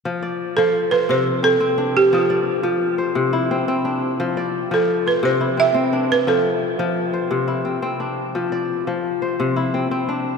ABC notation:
X:1
M:12/8
L:1/8
Q:3/8=115
K:F
V:1 name="Balafon"
z3 A2 =B c2 A3 G | F2 z8 z2 | z3 A2 =B c2 e3 B | A2 z8 z2 |
z12 |]
V:2 name="Kora"
z d3 z c2 z C2 D2- | D d3 z c2 E C2 D2- | D d3 z c2 E C2 D2- | D z4 c2 E C2 D2- |
D d3 z c2 E C2 D2 |]
V:3 name="Kora" clef=bass
F,2 z F,2 z C,2 z C2 z | F,2 z F,2 z C,2 z C2 z | F,2 z F,2 z C,2 z C2 z | F,2 z F,2 z C,2 z C2 z |
F,2 z F,2 z C,2 z C2 z |]